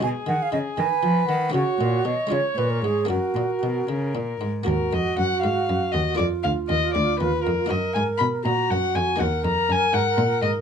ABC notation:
X:1
M:6/8
L:1/16
Q:3/8=79
K:F#
V:1 name="Violin"
G6 B6 | c12 | A8- A2 z2 | [K:Ebm] B2 e2 g2 f4 e2 |
=d2 f2 e2 d2 c2 B2 | e2 a2 c'2 b2 g2 a2 | g2 b2 a2 g4 e2 |]
V:2 name="Flute"
g2 f e d2 g4 f2 | F4 d2 c2 B A G2 | F6 z6 | [K:Ebm] G12 |
F12 | B6 G6 | B12 |]
V:3 name="Harpsichord"
[G,DF]12 | [A,CF]6 [G,CE]6 | [A,CF]12 | [K:Ebm] [B,GB]12 |
[B,FA]12 | [B,EG]12 | [B,EG]12 |]
V:4 name="Harpsichord" clef=bass
B,,2 D,2 C,2 D,2 E,2 D,2 | C,2 A,,2 B,,2 C,2 A,,2 G,,2 | F,,2 A,,2 B,,2 C,2 A,,2 G,,2 | [K:Ebm] E,,2 F,,2 G,,2 A,,2 G,,2 E,,2 |
F,,2 =D,,2 E,,2 D,,2 E,,2 F,,2 | G,,2 A,,2 C,2 B,,2 G,,2 F,,2 | E,,2 F,,2 G,,2 A,,2 B,,2 A,,2 |]
V:5 name="Cello" clef=bass
B,,2 D,2 C,2 D,2 E,2 D,2 | C,2 A,,2 B,,2 C,2 A,,2 G,,2 | F,,2 A,,2 B,,2 C,2 A,,2 G,,2 | [K:Ebm] E,,2 F,,2 G,,2 A,,2 G,,2 E,,2 |
F,,2 =D,,2 E,,2 D,,2 E,,2 F,,2 | G,,2 A,,2 C,2 B,,2 G,,2 F,,2 | E,,2 F,,2 G,,2 A,,2 B,,2 A,,2 |]